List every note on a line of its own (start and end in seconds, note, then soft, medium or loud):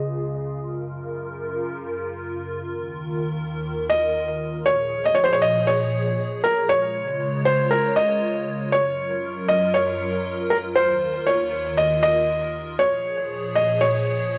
0.00 0.58 C#2 medium
0.00 2.60 C#3 medium
0.00 4.63 F4 medium
0.00 0.58 G#4 medium
0.00 0.30 D#5 loud
0.61 2.62 F#2 medium
0.61 2.62 A#4 medium
2.64 4.65 D#2 medium
2.64 4.65 D#3 medium
2.64 4.65 A#4 medium
3.90 4.63 D#5 loud
4.66 6.69 A#2 medium
4.66 6.69 F3 medium
4.66 6.69 G#4 medium
4.66 5.04 C#5 loud
4.66 6.69 C#5 loud
5.06 5.15 D#5 medium
5.15 5.25 C#5 loud
5.24 5.34 C5 loud
5.33 5.43 C#5 medium
5.42 5.69 D#5 loud
5.67 6.40 C#5 loud
6.44 6.68 A#4 medium
6.69 8.72 C#3 medium
6.69 8.72 G#3 medium
6.69 8.72 F4 medium
6.69 7.49 C#5 loud
6.69 8.72 C#5 medium
7.45 7.72 C5 loud
7.71 7.98 A#4 medium
7.96 8.76 D#5 loud
8.72 10.75 F#2 medium
8.72 10.75 F#3 medium
8.72 12.77 F4 medium
8.72 12.77 A#4 medium
8.72 9.52 C#5 loud
9.48 9.76 D#5 loud
9.74 10.53 C#5 loud
10.50 10.56 A#4 medium
10.76 12.79 D#2 medium
10.76 12.79 D#3 medium
10.76 11.29 C5 loud
11.27 11.80 C#5 loud
11.77 12.01 D#5 loud
12.03 12.82 D#5 loud
12.79 14.38 A#2 medium
12.79 14.38 F3 medium
12.79 14.38 G#4 medium
12.79 13.58 C#5 loud
12.79 14.38 C#5 medium
13.55 13.83 D#5 loud
13.81 14.38 C#5 loud